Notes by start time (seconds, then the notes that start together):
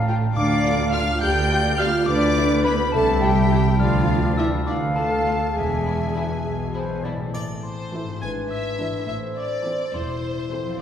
Already playing: A1 A2 D3 F4 D5
0.08 A3 F4 G5
0.36 D2 D3 D4 D5 F5 D6
0.64 B3 F4
0.92 F4 F5 F6
1.21 D2 G4 B4 D5 G5 G6
1.50 F4
1.78 B3 F4 F5 F6
2.06 D2 D3 D4 B4 D5 D6
2.36 B3 E4
2.64 B3 E4 G#4 B4 B5
2.92 C2 C3 A3 A4 E5 A5
3.22 G3 C4 E4 G4 G5
3.51 E4 A4
3.79 D2 D3 F3 F4 D5 F5 F6
4.09 B3 F4
4.37 E3 E4 F4 E5 E6
4.67 D2 D3 D4 B4 D5 F5 D6
4.96 A3 F4 A4 A5
5.25 B3 F4
5.55 E1 E2 E3 G#3 G#4 E5 G#5
5.85 E4
6.15 E4 B4
6.45 B1 B2 E4 E5
6.74 E4 B4 C5
7.04 E4 D5
7.16 A2
7.21 C4
7.25 E4
7.30 A4
7.34 A1 A2 D5 D6, triangle
7.63 C5 C6
7.93 E3 E4 A4 C5
8.03 G#2
8.08 D4
8.12 E4
8.17 B4
8.22 G#1 G#2 B4 G#5 G#6
8.50 E5 E6
8.79 E3 D4 B4
8.90 A2
8.94 C4
8.98 E4
9.03 C5
9.08 A1 A2 C5 E5 E6
9.37 D5 D6
9.65 E3 C4 A4 C5
9.93 E1 E2 E4 C5 C6
10.51 E3 C4 A4 C5
10.63 F3
10.67 C4
10.72 A4
10.76 C5